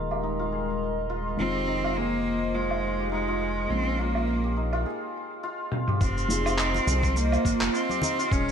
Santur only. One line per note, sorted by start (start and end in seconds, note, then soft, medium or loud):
0.00 0.23 D#4 medium
0.00 0.39 F4 medium
0.00 0.17 G#4 medium
0.00 1.38 F5 medium
0.11 0.58 G4 medium
0.23 1.67 D#4 medium
0.39 1.09 F4 medium
0.52 1.61 G#4 medium
1.10 1.84 F4 medium
1.39 2.83 F5 medium
1.55 2.03 G4 medium
1.67 3.11 D#4 medium
1.84 2.54 F4 medium
1.97 3.05 G#4 medium
2.54 3.28 F4 medium
2.83 4.27 F5 medium
2.99 3.47 G4 medium
3.12 4.56 D#4 medium
3.28 3.98 F4 medium
3.41 4.50 G#4 medium
3.98 4.73 F4 medium
4.27 5.72 F5 medium
4.44 4.92 G4 medium
4.57 6.58 D#4 medium
4.73 5.43 F4 loud
4.86 5.94 G#4 medium
5.43 6.00 F4 medium
5.72 6.29 F5 medium
5.88 6.46 G4 medium
6.01 6.74 F4 loud
6.29 7.73 F5 medium
6.46 6.93 G4 medium
6.58 8.02 D#4 medium
6.74 7.44 F4 medium
6.87 7.96 G#4 medium
7.45 8.18 F4 loud
7.74 8.52 F5 medium
7.90 8.38 G4 medium
8.03 8.52 D#4 medium
8.19 8.52 F4 loud
8.32 8.52 G#4 medium